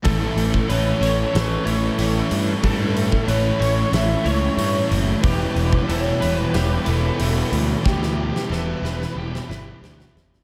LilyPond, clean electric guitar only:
\new Staff \with { instrumentName = "Clean electric guitar" } { \time 4/4 \key a \mixolydian \tempo 4 = 92 a'4 b'8 cis''8 a'8 cis''4 r8 | a'4 b'8 cis''8 a'8 cis''4 r8 | g'4 a'8 b'8 g'8 b'4 r8 | g'4 a'8 b'8 g'8 b'4 r8 | }